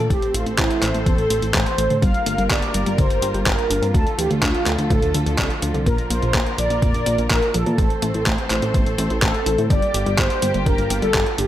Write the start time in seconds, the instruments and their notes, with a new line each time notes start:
Already playing: analog polysynth A4
0.10 analog synth bass A1, synth arpeggio sound A2, string section E3 A3 C4 A4 C5, analog polysynth G4, kick, closed hi-hat
0.22 closed hi-hat
0.34 analog synth bass A1, synth arpeggio sound A2, analog polysynth F4, closed hi-hat
0.46 analog synth bass A1, synth arpeggio sound A2, closed hi-hat
0.58 analog synth bass A1, synth arpeggio sound A3, analog polysynth E4, kick, clap, closed hi-hat
0.71 closed hi-hat
0.82 analog synth bass A1, synth arpeggio sound A2, clap, closed hi-hat
0.94 analog synth bass A1, synth arpeggio sound A2, closed hi-hat
1.06 analog synth bass A1, synth arpeggio sound E2, analog polysynth A4, kick, closed hi-hat
1.18 analog synth bass A1, closed hi-hat
1.30 analog synth bass A1, synth arpeggio sound A3, closed hi-hat
1.42 analog synth bass A1, synth arpeggio sound A2, closed hi-hat
1.54 analog synth bass A1, synth arpeggio sound A3, analog polysynth C5, kick, clap, closed hi-hat
1.66 closed hi-hat
1.78 analog synth bass A1, synth arpeggio sound E3, closed hi-hat
1.90 analog synth bass A2, synth arpeggio sound D3, closed hi-hat
2.02 analog synth bass G1, string section D3 G3 A#3 F4 A#4, synth arpeggio sound G3, analog polysynth F5, kick, closed hi-hat
2.14 closed hi-hat
2.26 analog synth bass G1, synth arpeggio sound A3, closed hi-hat
2.38 analog synth bass G1, synth arpeggio sound G3, closed hi-hat
2.50 analog synth bass G1, synth arpeggio sound G4, analog polysynth D5, kick, clap, closed hi-hat
2.62 closed hi-hat
2.74 analog synth bass G1, synth arpeggio sound G3, closed hi-hat
2.86 analog synth bass G1, synth arpeggio sound G3, closed hi-hat
2.98 analog synth bass G1, synth arpeggio sound D3, analog polysynth C5, kick, closed hi-hat
3.10 analog synth bass G1, closed hi-hat
3.22 analog synth bass G1, synth arpeggio sound G4, closed hi-hat
3.34 analog synth bass G1, synth arpeggio sound G3, closed hi-hat
3.46 analog synth bass G1, synth arpeggio sound G4, analog polysynth A#4, kick, clap, closed hi-hat
3.59 closed hi-hat
3.70 analog synth bass G1, synth arpeggio sound D4, closed hi-hat
3.82 analog synth bass G2, synth arpeggio sound C4, closed hi-hat
3.94 analog synth bass D2, synth arpeggio sound D3, string section F3 A3 A4, analog polysynth A4, kick, closed hi-hat
4.07 closed hi-hat
4.18 analog synth bass D2, synth arpeggio sound E3, analog polysynth G4, closed hi-hat
4.30 analog synth bass D2, synth arpeggio sound D3, closed hi-hat
4.42 analog synth bass D2, synth arpeggio sound D4, analog polysynth F4, kick, clap, closed hi-hat
4.54 closed hi-hat
4.66 analog synth bass D2, synth arpeggio sound D3, clap, closed hi-hat
4.78 analog synth bass D2, synth arpeggio sound D3, closed hi-hat
4.90 analog synth bass D2, synth arpeggio sound A2, analog polysynth A4, kick, closed hi-hat
5.02 analog synth bass D2, closed hi-hat
5.14 analog synth bass D2, synth arpeggio sound D3, closed hi-hat
5.26 analog synth bass D2, synth arpeggio sound D3, closed hi-hat
5.38 analog synth bass C2, synth arpeggio sound D4, kick, clap, closed hi-hat
5.50 closed hi-hat
5.62 analog synth bass D2, synth arpeggio sound D3, closed hi-hat
5.74 analog synth bass C2, synth arpeggio sound D3, closed hi-hat
5.86 analog synth bass A#1, synth arpeggio sound A#2, string section A#3 A#4, analog polysynth A#4, kick, closed hi-hat
5.98 closed hi-hat
6.10 analog synth bass A#1, synth arpeggio sound A#3, analog polysynth C5, closed hi-hat
6.22 analog synth bass A#1, synth arpeggio sound A#2, closed hi-hat
6.34 analog synth bass A#1, synth arpeggio sound A#3, kick, clap, closed hi-hat
6.46 closed hi-hat
6.58 analog synth bass A#1, synth arpeggio sound A#2, analog polysynth D5, closed hi-hat
6.70 analog synth bass A#1, synth arpeggio sound A#2, closed hi-hat
6.82 analog synth bass A#1, synth arpeggio sound F2, analog polysynth D5, kick, closed hi-hat
6.94 analog synth bass A#1, closed hi-hat
7.06 analog synth bass A#1, synth arpeggio sound A#3, closed hi-hat
7.18 analog synth bass A#1, synth arpeggio sound A#2, closed hi-hat
7.30 analog synth bass A#1, synth arpeggio sound A#3, analog polysynth A#4, kick, clap, closed hi-hat
7.42 closed hi-hat
7.54 analog synth bass A#1, synth arpeggio sound F3, analog polysynth A4, closed hi-hat
7.66 analog synth bass A#2, synth arpeggio sound E3, closed hi-hat
7.78 analog synth bass A1, synth arpeggio sound A2, string section E3 A3 C4 A4 C5, kick, closed hi-hat
7.90 closed hi-hat
8.02 analog synth bass A1, synth arpeggio sound A3, closed hi-hat
8.14 analog synth bass A1, synth arpeggio sound A2, closed hi-hat
8.26 analog synth bass A1, synth arpeggio sound A3, kick, clap, closed hi-hat
8.38 closed hi-hat
8.50 analog synth bass A1, synth arpeggio sound A2, clap, closed hi-hat
8.62 analog synth bass A1, synth arpeggio sound A2, closed hi-hat
8.74 analog synth bass A1, synth arpeggio sound E2, kick, closed hi-hat
8.86 analog synth bass A1, closed hi-hat
8.98 analog synth bass A1, synth arpeggio sound A3, closed hi-hat
9.10 analog synth bass A1, synth arpeggio sound A2, closed hi-hat
9.22 analog synth bass A1, synth arpeggio sound A3, analog polysynth A4, kick, clap, closed hi-hat
9.34 closed hi-hat
9.46 analog synth bass A1, synth arpeggio sound E3, closed hi-hat
9.58 analog synth bass A2, synth arpeggio sound D3, closed hi-hat
9.70 analog synth bass G1, string section D3 G3 A#3 F4 G4, synth arpeggio sound G3, analog polysynth D5, kick, closed hi-hat
9.82 closed hi-hat
9.94 analog synth bass G1, synth arpeggio sound G4, closed hi-hat
10.06 analog synth bass G1, synth arpeggio sound G3, closed hi-hat
10.18 analog synth bass G1, synth arpeggio sound G4, analog polysynth C5, kick, clap, closed hi-hat
10.30 closed hi-hat
10.42 analog synth bass G1, synth arpeggio sound G3, closed hi-hat
10.54 analog synth bass G1, synth arpeggio sound G3, closed hi-hat
10.66 analog synth bass G1, synth arpeggio sound D3, analog polysynth A#4, kick, closed hi-hat
10.78 analog synth bass G1, closed hi-hat
10.90 analog synth bass G1, synth arpeggio sound G4, closed hi-hat
11.02 analog synth bass G1, synth arpeggio sound G3, analog polysynth A4, closed hi-hat
11.14 analog synth bass G1, synth arpeggio sound G4, kick, clap, closed hi-hat
11.26 closed hi-hat
11.38 analog synth bass G1, synth arpeggio sound D4, analog polysynth G4, closed hi-hat